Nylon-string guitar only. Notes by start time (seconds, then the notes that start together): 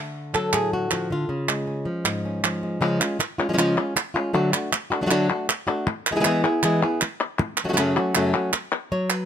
Already playing: D3 A3
0.34 F#3 A4
0.53 A2 G#4
0.73 F#4
0.91 F3 F#4
1.10 D3 F4
1.29 C#3
1.48 G#3
1.67 C#4
1.85 F3
2.04 G#2
2.25 C#4
2.44 F3
2.63 G#3
2.81 C#3 F3 G#3 C#4 F4
3.00 G#3 C#4 F4
3.19 muted nylon-string guitar stroke
3.38 G#3 C#4 F4
3.49 F3 G#3 C#4 F4
3.53 F3 G#3 C#4 F4
3.58 C#3 F3 G#3 C#4 F4
3.77 G#3 C#4 F4
3.96 muted nylon-string guitar stroke
4.14 G#3 C#4 F4
4.33 D3 F#3 A3 D4 F#4
4.52 A3 D4 F#4
4.72 muted nylon-string guitar stroke
4.90 A3 D4 F#4
5.01 F#3 A3 D4 F#4
5.06 F#3 A3 D4 F#4
5.11 D3 F#3 A3 D4 F#4
5.29 A3 D4 F#4
5.49 muted nylon-string guitar stroke
5.67 A3 D4 F#4
5.87 muted nylon-string guitar stroke
6.11 G#3 B3 E4 G#4
6.16 G#3 B3 E4 G#4
6.20 G#3 B3 E4 G#4
6.25 E3 G#3 B3 E4 G#4
6.44 B3 E4 G#4
6.63 E3 G#3 B3 E4 G#4
6.82 B3 E4 G#4
7.02 muted nylon-string guitar stroke
7.39 muted nylon-string guitar stroke
7.64 C#3 F#3 A3 C#4 F#4
7.68 C#3 F#3 A3 C#4 F#4
7.73 C#3 F#3 A3 C#4 F#4
7.77 F#2 C#3 F#3 A3 C#4 F#4
7.96 F#3 A3 C#4 F#4
8.15 F#2 C#3 F#3 A3 C#4 F#4
8.33 F#3 A3 C#4 F#4
8.53 muted nylon-string guitar stroke
8.92 F#3 C#5
9.11 B4